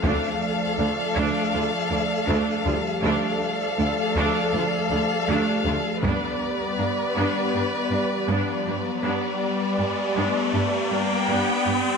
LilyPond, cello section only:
\new Staff \with { instrumentName = "Cello section" } { \clef bass \time 4/4 \key d \phrygian \tempo 4 = 80 d,8 r8 d,8 d,8 d,8 d,8 d,8 d,8 | d,8 r8 d,8 d,8 d,8 d,8 d,8 d,8 | g,8 r8 g,8 g,8 g,8 g,8 g,8 g,8 | g,8 r8 g,8 g,8 g,8 g,8 g,8 g,8 | }